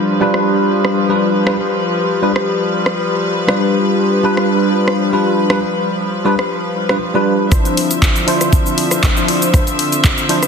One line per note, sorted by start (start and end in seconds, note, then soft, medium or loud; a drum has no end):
0.00 7.48 F3 medium
0.00 0.18 G3 medium
0.00 7.48 G3 medium
0.00 0.18 D4 medium
0.00 0.18 F4 medium
0.00 0.19 B4 medium
0.00 7.48 B4 medium
0.20 1.06 G3 medium
0.20 1.06 D4 medium
0.20 1.07 F4 medium
0.20 1.07 B4 loud
0.34 cross-stick medium
0.85 cross-stick medium
1.09 1.44 G3 medium
1.09 1.44 D4 medium
1.09 1.44 F4 medium
1.09 1.44 B4 medium
1.46 1.54 G3 medium
1.46 1.54 D4 medium
1.46 1.55 F4 medium
1.46 1.55 B4 medium
1.46 cross-stick medium
2.22 2.30 G3 medium
2.22 2.30 D4 medium
2.22 2.30 F4 medium
2.22 2.31 B4 medium
2.36 cross-stick medium
2.86 cross-stick medium
3.47 4.20 G3 medium
3.47 4.21 D4 medium
3.47 4.21 F4 medium
3.47 4.22 B4 medium
3.47 cross-stick medium
4.23 5.09 G3 medium
4.23 5.10 D4 medium
4.23 5.10 F4 medium
4.23 5.10 B4 medium
4.37 cross-stick medium
4.88 cross-stick medium
5.12 5.47 G3 medium
5.12 5.47 D4 medium
5.12 5.47 F4 medium
5.12 5.47 B4 medium
5.50 5.58 G3 medium
5.50 5.58 D4 medium
5.50 5.58 F4 medium
5.50 5.58 B4 medium
5.50 cross-stick medium
6.25 6.33 G3 medium
6.25 6.33 D4 medium
6.25 6.33 F4 medium
6.25 6.34 B4 medium
6.39 cross-stick medium
6.89 6.96 G3 medium
6.89 6.96 D4 medium
6.89 6.97 F4 medium
6.89 6.97 B4 medium
6.89 cross-stick medium
7.14 7.49 G3 medium
7.14 7.49 D4 medium
7.14 7.49 F4 medium
7.14 7.49 B4 loud
7.51 10.47 D3 medium
7.51 10.47 F3 medium
7.51 10.47 C4 medium
7.51 8.24 D4 medium
7.51 8.25 E4 medium
7.51 8.25 C5 medium
7.51 10.47 E5 medium
7.51 kick loud
7.51 cross-stick medium
7.51 closed hi-hat medium
7.51 shaker medium
7.65 closed hi-hat soft
7.65 shaker soft
7.77 open hi-hat medium
7.91 closed hi-hat medium
7.91 shaker medium
8.02 kick medium
8.02 clap loud
8.02 closed hi-hat medium
8.02 shaker medium
8.16 closed hi-hat soft
8.16 shaker soft
8.26 9.13 F3 medium
8.26 9.13 D4 medium
8.26 9.13 E4 medium
8.26 9.14 C5 loud
8.26 open hi-hat medium
8.41 cross-stick medium
8.41 closed hi-hat medium
8.41 shaker medium
8.53 kick loud
8.53 closed hi-hat medium
8.53 shaker medium
8.66 shaker soft
8.78 open hi-hat loud
8.91 cross-stick medium
8.91 closed hi-hat medium
8.91 shaker medium
9.03 kick medium
9.03 clap loud
9.03 closed hi-hat medium
9.03 shaker soft
9.16 9.50 F3 medium
9.16 9.50 D4 medium
9.16 9.51 E4 medium
9.16 9.51 C5 medium
9.16 shaker soft
9.28 open hi-hat medium
9.42 closed hi-hat soft
9.42 shaker medium
9.54 9.61 F3 medium
9.54 9.62 D4 medium
9.54 9.62 E4 medium
9.54 9.62 C5 medium
9.54 kick loud
9.54 cross-stick medium
9.54 closed hi-hat medium
9.54 shaker soft
9.67 closed hi-hat soft
9.67 shaker soft
9.79 open hi-hat loud
9.92 closed hi-hat soft
9.92 shaker medium
10.04 kick loud
10.04 clap loud
10.04 closed hi-hat medium
10.04 shaker medium
10.18 closed hi-hat soft
10.18 shaker soft
10.28 10.37 F3 medium
10.28 10.37 D4 medium
10.28 10.37 E4 medium
10.28 10.37 C5 loud
10.28 open hi-hat medium
10.43 cross-stick medium
10.43 closed hi-hat soft
10.43 shaker medium